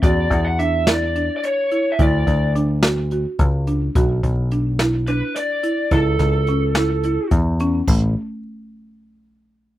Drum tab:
CC |-------|-------|-------|-------|
HH |xxxxxxx|xxxxxxx|xxxxxxx|xxxxxxx|
SD |---o---|---o---|---o-o-|-o-o---|
BD |oo-----|oo---o-|oo-----|oo---o-|

CC |x------|
HH |-------|
SD |-------|
BD |o------|